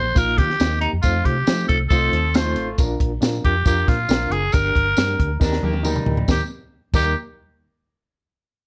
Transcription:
Already playing: A#1 C5
0.15 A#1 A#3 D#4 F4 A#4, kick, closed hi-hat, tambourine
0.38 D#3 G4, kick, snare, closed hi-hat
0.50 snare
0.60 D#2 A#3 D#4 F4, snare, closed hi-hat, tambourine
0.67 G4
0.81 D#4, closed hi-hat
0.93 F2
1.02 F2 A3 C4 D#4 F4 C5, kick, closed hi-hat, tambourine
1.25 C3 G4, kick, closed hi-hat
1.47 F3 G3 C4 D#4 F4 C5, snare, closed hi-hat, tambourine
1.53 A3
1.68 C2 A4, kick, closed hi-hat
1.89 C2 A3 C4 D#4 F4 A4 C5, kick, closed hi-hat, tambourine
2.12 D#2 C4 A4, closed hi-hat
2.34 A3 C4 D#4 F4 C5, snare, closed hi-hat, tambourine
2.56 A1, closed hi-hat
2.78 A#1 C#4 F4 A#4, kick, closed hi-hat, tambourine
2.84 D4
3.00 A#1, kick, closed hi-hat
3.21 A#2 D4 F4 A#4, snare, closed hi-hat, tambourine
3.44 F2 G4, kick, closed hi-hat
3.65 F2 D4 F4 G4 A#4, kick, closed hi-hat, tambourine
3.88 A#2 F4, kick, snare, closed hi-hat
4.09 A#1 D4 F4 A#4, snare, closed hi-hat, tambourine
4.30 F#1 G#4, closed hi-hat
4.52 G1 D4 G4 A#4, kick, closed hi-hat, tambourine
4.75 G1, kick, closed hi-hat
4.97 G2 D4 G4 A#4, snare, closed hi-hat, tambourine
5.20 D2, kick, closed hi-hat
5.40 D#2 D4 D#4 G4 A#4, kick, snare, tambourine
5.53 snare
5.63 D#2 A#3 G4, high tom
5.73 high tom
5.83 G3 D#4 G4 A#4, mid tom, tambourine
5.96 mid tom
6.06 D2, floor tom
6.17 floor tom
6.28 D#2 G3 A#3 D#4 G4 A#4, kick, snare, tambourine
6.93 D#2 G3 A#3 D#4 G4 A#4, kick, crash, tambourine

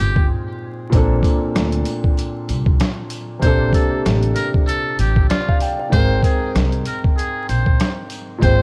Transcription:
Already playing: A#2 G#3 C4 C5 G5
0.00 G1 G4, sleigh bells
0.16 kick
0.90 A#1 A#2 A#3 C4, kick, closed hi-hat, sleigh bells
0.95 D4 A4
1.23 kick, closed hi-hat, sleigh bells
1.55 D2, cross-stick, snare, closed hi-hat, sleigh bells
1.73 closed hi-hat
1.86 closed hi-hat, sleigh bells
2.04 kick
2.18 closed hi-hat, sleigh bells
2.49 C2, closed hi-hat, sleigh bells
2.66 kick
2.80 cross-stick, snare, closed hi-hat, sleigh bells
3.10 closed hi-hat, sleigh bells
3.39 A#1 C3 A#3 C4 C5, kick, closed hi-hat, sleigh bells
3.45 D4 A4
3.73 A4, kick, closed hi-hat, sleigh bells
4.05 A1, cross-stick, snare, closed hi-hat, sleigh bells
4.22 closed hi-hat
4.35 A#4, closed hi-hat, sleigh bells
4.54 kick
4.67 A4, closed hi-hat, sleigh bells
4.99 A1 G4, closed hi-hat, sleigh bells
5.16 kick
5.29 F4 D5, cross-stick, snare, closed hi-hat, sleigh bells
5.48 F5, kick
5.60 G5, closed hi-hat, sleigh bells
5.79 F5
5.89 G#1 G#2 G#3 C4 C5, kick, closed hi-hat, sleigh bells
5.95 A#4 G5
6.23 G#4, kick, closed hi-hat, sleigh bells
6.55 C2, cross-stick, snare, closed hi-hat, sleigh bells
6.72 closed hi-hat
6.86 A#4, closed hi-hat, sleigh bells
7.04 kick
7.17 G#4, closed hi-hat, sleigh bells
7.49 A#1 C5, closed hi-hat, sleigh bells
7.66 kick
7.80 cross-stick, snare, closed hi-hat, sleigh bells
8.10 closed hi-hat, sleigh bells
8.38 A#2 G#3 C4 C5
8.42 G#1 C5 G5, kick, closed hi-hat, sleigh bells

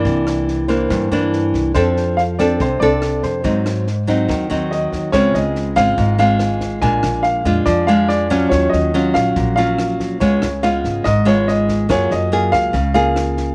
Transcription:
Already playing: E3 A#3 D4 D5
0.05 C2 C3, kick, snare
0.27 cross-stick, snare
0.48 snare
0.68 E3 A#3 D4 C5, kick, snare
0.90 G2, kick, cross-stick, snare
1.11 G2 E3 A#3 D4, snare
1.33 snare
1.54 C2, kick, snare
1.74 F2 F3 C4 D4 A4 C5, kick, cross-stick, snare
1.97 snare
2.17 F5, snare
2.39 C4 D4 A4 D5, kick, cross-stick, snare
2.60 C2 C3 C5, kick, snare
2.80 C2 C4 D4 A4 D5, snare
3.02 cross-stick, snare
3.23 F2 C5, kick, snare
3.44 G#2 F#3 C4 D#4, kick, snare
3.66 cross-stick, snare
3.87 snare
4.07 F#3 C4 D#4, kick, snare
4.29 D#2 D#3, kick, cross-stick, snare
4.50 D#2 F#3 C4 D#4, snare
4.71 D#5, snare
4.92 D#2, kick, snare
5.12 C#2 C#3 G#3 C4 F4 C#5, kick, cross-stick, snare
5.34 C#2 D#5, snare
5.55 snare
5.76 G#1 G#3 C4 F4 F5, kick, cross-stick, snare
5.97 G#1 G#2, kick, snare
6.18 G#3 C4 F4 F5, snare
6.39 cross-stick, snare
6.61 kick, snare
6.82 A#1 A#2 G#3 D4 F4 G#5, kick, snare
7.03 A#1, cross-stick, snare
7.23 F5, snare
7.45 F2 G#3 D4 F4, kick, snare
7.66 F2 F3 D5, kick, cross-stick, snare
7.87 G#3 D4 F4 F5, snare
8.08 D5, snare
8.30 F#3 C#4 F4, kick, snare
8.49 D#2 D#3 C#5, kick, cross-stick, snare
8.70 D#2 D#5, snare
8.94 F#3 C#4 F4, snare
9.14 A#1 F5, kick, cross-stick, snare
9.36 A#1 A#2, kick, snare
9.56 F#3 C#4 F4 F5, snare
9.78 cross-stick, snare
10.00 kick, snare
10.20 C#2 C#3 G#3 B3 F4 C#5, kick, snare
10.42 C#2, cross-stick, snare
10.63 G#3 B3 F4 F5, snare
10.84 G#1, kick, snare
11.04 G#1 G#2 D#5, kick, cross-stick, snare
11.25 G#3 B3 F4 C#5, snare
11.48 D#5, snare
11.69 kick, snare
11.89 F#2 F#3 A#3 F4 G#4 C#5, kick, cross-stick, snare
12.11 F#2 D#5, snare
12.32 A#3 F4 G#4, snare
12.52 C#2 F5, kick, cross-stick, snare
12.73 C#2 C#3, kick, snare
12.94 A#3 F4 G#4 F5, snare
13.16 cross-stick, snare
13.37 kick, snare

